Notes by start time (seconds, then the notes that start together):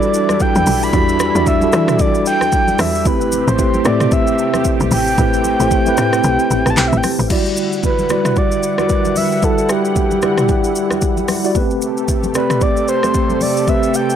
Already playing: E3 G3 D4 E4 F#4 A4 B4 D5
0.02 shaker
0.14 shaker
0.29 cross-stick, high conga, shaker
0.40 G5, kick, shaker
0.55 E2, high conga, shaker
0.67 B1, open hi-hat, high conga, shaker
0.83 B5, shaker
0.93 E2 G3 D4 E4 F#4 D5, kick, low conga, shaker
1.09 shaker
1.20 cross-stick, high conga, shaker
1.35 E2 G3 D4 E4 F#4 D5, shaker
1.46 E5, kick, low conga, shaker
1.61 G3 D4 E4 F#4 A4, high conga, shaker
1.73 E3, cross-stick, low conga, shaker
1.88 cross-stick, mid tom, shaker
1.99 D5, kick, low conga, shaker
2.15 shaker
2.26 G5, shaker
2.41 cross-stick, high conga, shaker
2.52 kick, shaker
2.68 high conga, shaker
2.79 E2 E5, cross-stick, open hi-hat, high conga, shaker
2.95 shaker
3.05 A1 C3 A3 C4 E4 G4 B4, kick, low conga, shaker
3.21 shaker
3.32 high conga, shaker
3.48 A1 C5, shaker
3.58 A3 C4 E4 G4 B4, kick, low conga, shaker
3.74 high conga, shaker
3.85 A2 A3 C4 E4 G4 C5 D5, cross-stick, low conga, shaker
4.00 cross-stick, mid tom, shaker
4.12 E5, kick, low conga, shaker
4.27 shaker
4.39 shaker
4.54 cross-stick, high conga, shaker
4.65 kick, shaker
4.80 B1, high conga, shaker
4.91 A1 G5, open hi-hat, high conga, shaker
5.07 shaker
5.18 A1 A3 C4 E4 G4 B4, kick, low conga, shaker
5.34 shaker
5.44 high conga, shaker
5.60 A1 A3 C4 E4 G4 C5, shaker
5.71 kick, low conga, shaker
5.86 A3 C4 E4 G4 B4, high conga, shaker
5.97 A2, cross-stick, low conga, shaker
6.13 cross-stick, shaker
6.24 B1, low conga, shaker
6.39 shaker
6.51 A1, shaker
6.66 A1, cross-stick, high conga, shaker
6.70 A5
6.77 B1 G5, clap, shaker
6.88 E5
6.93 A1, high conga, shaker
6.97 G5
7.04 cross-stick, open hi-hat, high conga, shaker
7.19 A1, shaker
7.30 D3 F#3 G3 E4 F#4 D5 F#5, kick, crash, low conga, shaker
7.36 G3
7.46 shaker
7.57 shaker
7.73 shaker
7.83 B4, kick, low conga, shaker
7.99 high conga, shaker
8.10 G3 E4 F#4 D5, cross-stick, low conga, shaker
8.25 cross-stick, mid tom, shaker
8.36 D5, kick, low conga, shaker
8.52 shaker
8.63 shaker
8.78 G3 E4 F#4 A#4 D5, cross-stick, high conga, shaker
8.87 B4, kick, shaker
9.05 high conga, shaker
9.16 E5, open hi-hat, high conga, shaker
9.32 shaker
9.42 G3 E4 A4 E5 F#5, kick, low conga, shaker
9.58 shaker
9.69 G4, cross-stick, shaker
9.85 shaker
9.96 kick, low conga, shaker
10.11 high conga, shaker
10.22 G3 E4 D5 F#5, cross-stick, low conga, shaker
10.38 cross-stick, mid tom, shaker
10.49 kick, low conga, shaker
10.64 shaker
10.76 shaker
10.91 cross-stick, high conga, shaker
11.02 kick, shaker
11.17 high conga, shaker
11.28 cross-stick, open hi-hat, high conga, shaker
11.44 G3 E4 F#4 D5, shaker
11.55 C3 A3 B3 G4 A4 B4, kick, low conga, shaker
11.62 C4
11.71 shaker
11.82 shaker
11.97 shaker
12.08 kick, low conga, shaker
12.23 high conga, shaker
12.34 A3 C4 G4 B4 D5, cross-stick, low conga, shaker
12.50 cross-stick, mid tom, shaker
12.61 D5, kick, low conga, shaker
12.77 shaker
12.88 C5, shaker
13.03 A3 C4 G4 C5, cross-stick, high conga, shaker
13.14 kick, shaker
13.30 high conga, shaker
13.41 D5, open hi-hat, high conga, shaker
13.57 shaker
13.67 A3 C4 G4 B4 E5, kick, low conga, shaker
13.83 shaker
13.94 G5, shaker
14.10 shaker